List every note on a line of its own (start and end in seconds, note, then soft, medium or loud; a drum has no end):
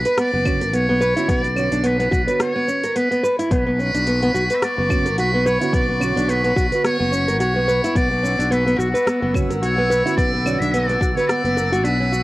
0.00 0.15 B4 loud
0.05 0.17 B4 medium
0.05 open hi-hat soft
0.05 cabasa soft
0.17 0.32 B3 medium
0.17 0.76 D5 loud
0.17 cross-stick medium
0.17 open hi-hat medium
0.17 cabasa soft
0.33 0.73 F#1 medium
0.33 0.45 B3 medium
0.45 0.63 D3 loud
0.45 0.63 B3 medium
0.45 0.60 C#4 medium
0.45 0.63 C#4 medium
0.45 0.64 F#4 loud
0.45 kick loud
0.45 cabasa medium
0.45 claves medium
0.61 0.72 A#4 medium
0.61 open hi-hat soft
0.61 cabasa soft
0.73 1.12 B1 loud
0.73 0.88 B3 medium
0.73 1.32 C#5 loud
0.73 open hi-hat medium
0.73 cabasa soft
0.89 1.00 B3 loud
1.01 1.15 B4 loud
1.01 cabasa medium
1.16 1.54 D3 medium
1.16 1.54 B3 medium
1.16 1.54 C#4 medium
1.16 1.28 E4 medium
1.16 1.55 F#4 loud
1.16 open hi-hat soft
1.16 cabasa soft
1.28 1.68 B1 loud
1.28 1.43 B3 medium
1.28 1.88 D5 loud
1.28 kick loud
1.28 open hi-hat medium
1.28 cabasa soft
1.44 1.56 B3 medium
1.44 open hi-hat soft
1.55 2.24 D3 medium
1.55 2.24 B3 medium
1.55 1.71 C#4 medium
1.55 2.25 F#4 medium
1.55 2.25 C#5 medium
1.55 cabasa medium
1.55 claves medium
1.72 2.09 B1 medium
1.72 1.83 D4 medium
1.72 open hi-hat soft
1.72 cabasa soft
1.84 1.98 B3 medium
1.84 2.41 B4 loud
1.84 open hi-hat medium
1.84 cabasa soft
2.00 2.11 B3 loud
2.00 open hi-hat soft
2.11 2.25 B1 medium
2.11 2.21 F#4 loud
2.11 kick loud
2.11 cabasa medium
2.26 4.86 D3 medium
2.26 4.87 B3 medium
2.26 2.39 B4 medium
2.26 4.87 C#5 medium
2.26 open hi-hat soft
2.26 cabasa soft
2.30 4.88 F#4 medium
2.39 2.54 B3 medium
2.39 2.98 C#5 loud
2.39 cross-stick medium
2.39 open hi-hat medium
2.39 cabasa soft
2.56 2.67 B3 medium
2.68 2.83 C#4 medium
2.68 cabasa medium
2.83 2.95 A#4 medium
2.83 open hi-hat soft
2.83 cabasa soft
2.96 3.10 B3 medium
2.96 3.24 B4 medium
2.96 open hi-hat medium
2.96 cabasa soft
3.11 3.22 B3 medium
3.11 open hi-hat soft
3.23 3.38 B4 medium
3.23 cabasa medium
3.39 3.50 E4 loud
3.39 open hi-hat soft
3.39 cabasa soft
3.51 3.90 B1 loud
3.51 3.65 B3 medium
3.51 12.23 B3 medium
3.51 4.57 B4 loud
3.51 12.23 F#5 medium
3.51 7.95 C#6 medium
3.51 kick loud
3.51 open hi-hat medium
3.51 cabasa soft
3.67 3.78 B3 medium
3.79 3.94 C#4 medium
3.79 cabasa medium
3.94 4.31 B1 medium
3.94 4.06 D4 medium
3.94 open hi-hat soft
3.94 cabasa soft
4.07 4.21 B3 medium
4.07 open hi-hat medium
4.07 cabasa soft
4.23 4.34 B3 medium
4.23 open hi-hat soft
4.34 4.48 B1 medium
4.34 4.44 F#4 medium
4.34 cabasa medium
4.50 4.61 B4 medium
4.50 open hi-hat soft
4.50 cabasa soft
4.55 4.65 E5 medium
4.62 4.77 B3 medium
4.62 5.18 D5 loud
4.62 cross-stick medium
4.62 open hi-hat medium
4.62 cabasa soft
4.78 5.17 F#1 medium
4.78 4.90 B3 medium
4.89 5.07 D3 loud
4.89 5.07 B3 medium
4.89 5.08 C#4 medium
4.89 5.05 C#4 medium
4.89 5.08 F#4 loud
4.89 kick loud
4.89 cabasa medium
4.89 claves medium
5.06 5.17 A#4 medium
5.06 open hi-hat soft
5.06 cabasa soft
5.17 5.57 B1 loud
5.17 5.33 F#4 medium
5.17 5.48 B4 loud
5.17 open hi-hat medium
5.17 cabasa soft
5.34 5.45 B3 medium
5.46 5.60 B4 loud
5.46 5.76 C#5 loud
5.46 cabasa medium
5.61 5.98 D3 medium
5.61 5.98 B3 medium
5.61 5.99 C#4 medium
5.61 5.72 E4 medium
5.61 5.99 F#4 loud
5.61 open hi-hat soft
5.61 cabasa soft
5.73 6.13 B1 loud
5.73 5.88 B3 medium
5.73 6.31 D5 loud
5.73 kick loud
5.73 open hi-hat medium
5.73 cabasa soft
5.89 6.01 B3 medium
6.00 6.68 D3 medium
6.00 6.69 B3 medium
6.00 6.16 C#4 medium
6.00 6.69 C#5 medium
6.00 cabasa medium
6.00 claves medium
6.04 6.70 F#4 medium
6.16 6.53 B1 medium
6.16 6.28 D4 medium
6.16 open hi-hat soft
6.16 cabasa soft
6.28 6.43 B3 medium
6.28 6.84 B4 loud
6.28 open hi-hat medium
6.28 cabasa soft
6.44 6.55 B3 medium
6.44 open hi-hat soft
6.56 6.70 B1 medium
6.56 6.65 F#4 loud
6.56 kick loud
6.56 cabasa medium
6.70 9.31 D3 medium
6.70 9.31 B3 medium
6.70 6.83 B4 medium
6.70 9.32 B4 medium
6.70 open hi-hat soft
6.70 cabasa soft
6.75 9.33 F#4 loud
6.84 6.98 B3 medium
6.84 7.36 C#5 loud
6.84 cross-stick medium
6.84 open hi-hat medium
6.84 cabasa soft
6.99 7.40 F#1 medium
6.99 7.11 B3 medium
7.12 7.27 C#4 medium
7.12 cabasa medium
7.28 7.39 A#4 medium
7.28 open hi-hat soft
7.28 cabasa soft
7.40 7.79 B1 loud
7.40 7.55 F#4 medium
7.40 7.98 C#5 loud
7.40 open hi-hat medium
7.40 cabasa soft
7.56 7.67 B3 loud
7.68 7.82 B4 loud
7.68 cabasa medium
7.84 7.95 E4 loud
7.84 open hi-hat soft
7.84 cabasa soft
7.95 8.35 B1 loud
7.95 8.10 B3 medium
7.95 8.54 D5 loud
7.95 12.23 E6 medium
7.95 kick loud
7.95 open hi-hat medium
7.95 cabasa soft
8.11 8.23 B3 medium
8.23 8.38 C#4 medium
8.23 cabasa medium
8.39 8.76 B1 medium
8.39 8.50 D4 medium
8.39 open hi-hat soft
8.39 cabasa soft
8.51 8.65 B3 medium
8.51 8.81 B4 medium
8.51 open hi-hat medium
8.51 cabasa soft
8.67 8.78 B3 loud
8.67 open hi-hat soft
8.79 8.92 B1 medium
8.79 8.88 F#4 loud
8.79 9.36 F#4 medium
8.79 cabasa medium
8.94 9.05 B4 medium
8.94 open hi-hat soft
8.94 cabasa soft
9.06 9.21 B3 medium
9.06 cross-stick medium
9.06 open hi-hat medium
9.06 cabasa soft
9.22 9.62 F#1 medium
9.22 9.34 B3 medium
9.33 9.51 D3 loud
9.33 9.52 B3 medium
9.33 9.52 C#4 loud
9.33 9.50 C#4 medium
9.33 9.52 F#4 loud
9.33 kick loud
9.33 cabasa medium
9.33 claves medium
9.50 9.61 A#4 medium
9.50 open hi-hat soft
9.50 cabasa soft
9.62 10.01 B1 loud
9.62 9.77 F#4 medium
9.62 10.14 C#5 loud
9.62 open hi-hat medium
9.62 cabasa soft
9.78 9.89 B3 loud
9.90 10.04 B4 loud
9.90 cabasa medium
10.04 10.42 D3 medium
10.04 10.43 B3 medium
10.04 10.43 C#4 medium
10.04 10.17 E4 loud
10.04 10.43 F#4 loud
10.04 open hi-hat soft
10.04 cabasa soft
10.17 10.57 B1 loud
10.17 10.32 B3 medium
10.17 10.61 D5 loud
10.17 kick loud
10.17 open hi-hat medium
10.17 cabasa soft
10.34 10.45 B3 medium
10.43 11.12 D3 medium
10.43 11.13 B3 medium
10.43 10.61 C#4 medium
10.43 11.14 F#4 loud
10.43 11.13 D5 medium
10.43 cabasa medium
10.43 claves medium
10.60 10.97 B1 medium
10.60 10.72 D4 medium
10.60 10.73 E5 loud
10.60 open hi-hat soft
10.60 cabasa soft
10.72 10.88 B3 medium
10.72 11.17 D5 loud
10.72 open hi-hat medium
10.72 cabasa soft
10.89 11.00 B3 loud
10.89 open hi-hat soft
11.01 11.14 B1 medium
11.01 11.11 F#4 loud
11.01 kick loud
11.01 cabasa medium
11.14 12.23 D3 medium
11.14 12.23 B3 medium
11.14 12.23 B4 medium
11.14 11.28 B4 medium
11.14 11.27 C#5 loud
11.14 open hi-hat soft
11.18 12.23 F#4 medium
11.18 cabasa soft
11.27 11.44 B3 medium
11.27 11.85 D5 loud
11.27 cross-stick medium
11.27 open hi-hat medium
11.27 cabasa soft
11.44 11.84 F#1 medium
11.44 11.56 B3 medium
11.44 open hi-hat soft
11.57 11.71 A#4 medium
11.57 cabasa medium
11.72 11.84 F#4 loud
11.72 open hi-hat soft
11.72 cabasa soft
11.84 12.23 B1 loud
11.84 11.99 D4 medium
11.84 12.23 B4 loud
11.84 open hi-hat medium
11.84 cabasa soft
12.00 12.12 C#4 medium
12.12 12.23 F#4 medium
12.12 cabasa medium